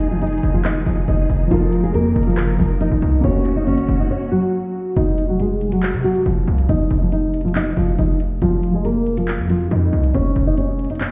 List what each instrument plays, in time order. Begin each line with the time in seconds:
Already playing: 808-style bass F1, felt piano D#3 D#4 G#4, string section D#3 D#4 G#4
0.00 closed hi-hat
0.11 nylon-string guitar F3 F4
0.22 nylon-string guitar D#4 D#5, closed hi-hat
0.27 closed hi-hat
0.32 closed hi-hat
0.38 closed hi-hat
0.43 808-style bass F1, closed hi-hat
0.54 nylon-string guitar F3 F4
0.65 nylon-string guitar D#4 D#5, cross-stick, clap, closed hi-hat
0.86 808-style bass F1, nylon-string guitar F3 F4, closed hi-hat
1.08 808-style bass F1, nylon-string guitar D#4 D#5, closed hi-hat
1.29 808-style bass F1, open hi-hat
1.47 808-style bass F1, felt piano F3 D#4, string section A#4, closed hi-hat
1.51 nylon-string guitar F3 F4, felt piano A#4
1.73 closed hi-hat
1.83 nylon-string guitar G#3 G#4
1.94 808-style bass F2, nylon-string guitar A#3 A#4, closed hi-hat
2.16 808-style bass F1, closed hi-hat
2.23 nylon-string guitar F4, closed hi-hat
2.28 nylon-string guitar F3, closed hi-hat
2.37 808-style bass F#1, cross-stick, clap, closed hi-hat
2.59 808-style bass F1, nylon-string guitar F3 F4, closed hi-hat
2.81 nylon-string guitar D#4 D#5, closed hi-hat
2.91 808-style bass F1
3.02 808-style bass C2, closed hi-hat
3.21 808-style bass F1, felt piano A#3 C#4, string section A#3 C#4 F#4, nylon-string guitar C#4 C#5, closed hi-hat
3.27 felt piano F#4
3.45 closed hi-hat
3.56 nylon-string guitar D#4 D#5
3.67 808-style bass G#1, nylon-string guitar C#4 C#5, closed hi-hat
3.78 closed hi-hat
3.89 808-style bass F1, closed hi-hat
3.99 nylon-string guitar D#4 D#5
4.10 nylon-string guitar C#4 C#5
4.32 nylon-string guitar F#3 F#4
4.96 808-style bass F1, nylon-string guitar D#4 D#5, closed hi-hat
5.18 closed hi-hat
5.29 nylon-string guitar F#3 F#4
5.40 nylon-string guitar G#3 G#4, closed hi-hat
5.61 closed hi-hat
5.72 nylon-string guitar F#3 F#4, closed hi-hat
5.83 clap, closed hi-hat
5.94 808-style bass C3
6.04 nylon-string guitar F#3 F#4, closed hi-hat
6.15 closed hi-hat
6.26 808-style bass F1, nylon-string guitar F3 F4, closed hi-hat
6.47 808-style bass C2, closed hi-hat
6.58 closed hi-hat
6.69 808-style bass F1, nylon-string guitar D#4 D#5, closed hi-hat
6.91 808-style bass F1, closed hi-hat
7.01 nylon-string guitar F3 F4
7.12 nylon-string guitar D#4 D#5, closed hi-hat
7.34 closed hi-hat
7.41 nylon-string guitar F4, closed hi-hat
7.45 nylon-string guitar F3, closed hi-hat
7.55 nylon-string guitar D#4 D#5, clap, closed hi-hat
7.77 808-style bass F1, nylon-string guitar F3 F4, closed hi-hat
7.99 808-style bass F1, nylon-string guitar D#4 D#5, closed hi-hat
8.20 closed hi-hat
8.42 808-style bass F1, nylon-string guitar F3 F4, closed hi-hat
8.63 closed hi-hat
8.74 nylon-string guitar G#3 G#4
8.85 nylon-string guitar A#3 A#4, closed hi-hat
9.06 closed hi-hat
9.17 nylon-string guitar F3 F4, closed hi-hat
9.28 clap, closed hi-hat
9.39 808-style bass F2
9.50 nylon-string guitar F3 F4, closed hi-hat
9.60 closed hi-hat
9.71 808-style bass F2, nylon-string guitar D#4 D#5, closed hi-hat
9.93 808-style bass C2, closed hi-hat
10.04 closed hi-hat
10.14 808-style bass F1, nylon-string guitar C#4 C#5, closed hi-hat
10.36 808-style bass F1, closed hi-hat
10.47 nylon-string guitar D#4 D#5
10.58 nylon-string guitar C#4 C#5, closed hi-hat
10.79 closed hi-hat
10.85 closed hi-hat
10.90 nylon-string guitar D#4 D#5, closed hi-hat
10.95 closed hi-hat
11.01 nylon-string guitar C#4 C#5, clap, closed hi-hat